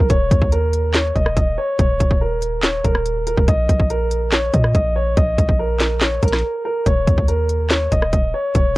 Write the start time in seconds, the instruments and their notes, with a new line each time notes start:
0.10 808-style bass D#1, grand piano C#5, kick, closed hi-hat
0.31 808-style bass D#2, kick, closed hi-hat
0.42 kick
0.52 grand piano A#4, closed hi-hat
0.73 closed hi-hat
0.94 grand piano C#5, snare, clap, closed hi-hat
1.16 808-style bass D#1, grand piano D#5, kick, closed hi-hat
1.26 cross-stick
1.37 808-style bass D#1, grand piano D#5, kick, closed hi-hat
1.58 grand piano C#5
1.79 808-style bass D#1, grand piano C#5, kick, closed hi-hat
2.00 808-style bass D#1, kick, closed hi-hat
2.11 kick
2.21 grand piano A#4
2.42 closed hi-hat
2.63 grand piano C#5, snare, clap, closed hi-hat
2.85 808-style bass D#1, grand piano A#4, kick, closed hi-hat
2.95 cross-stick
3.06 closed hi-hat
3.27 grand piano A#4, closed hi-hat
3.37 808-style bass D#1, kick
3.48 808-style bass A#1, grand piano D#5, kick, closed hi-hat
3.69 808-style bass A#1, kick, closed hi-hat
3.80 kick
3.90 grand piano A#4, closed hi-hat
4.11 closed hi-hat
4.32 grand piano C#5, snare, clap, closed hi-hat
4.54 808-style bass A#2, grand piano D#5, kick, closed hi-hat
4.64 cross-stick
4.75 808-style bass A#1, grand piano D#5, kick, closed hi-hat
4.96 grand piano C#5
5.17 808-style bass A#1, grand piano D#5, kick, closed hi-hat
5.38 808-style bass A#1, kick, closed hi-hat
5.49 kick
5.59 grand piano A#4
5.80 snare, clap, closed hi-hat
6.01 grand piano C#5, snare, clap, closed hi-hat
6.23 808-style bass A#1, grand piano A#4, kick, closed hi-hat
6.28 closed hi-hat
6.33 cross-stick, snare, closed hi-hat
6.39 closed hi-hat
6.65 grand piano A#4
6.86 808-style bass D#1, grand piano C#5, kick, closed hi-hat
7.07 808-style bass D#2, kick, closed hi-hat
7.18 kick
7.28 grand piano A#4, closed hi-hat
7.49 closed hi-hat
7.70 grand piano C#5, snare, clap, closed hi-hat
7.92 808-style bass D#1, grand piano D#5, kick, closed hi-hat
8.02 cross-stick
8.13 808-style bass D#1, grand piano D#5, kick, closed hi-hat
8.34 grand piano C#5
8.55 808-style bass D#1, grand piano C#5, kick, closed hi-hat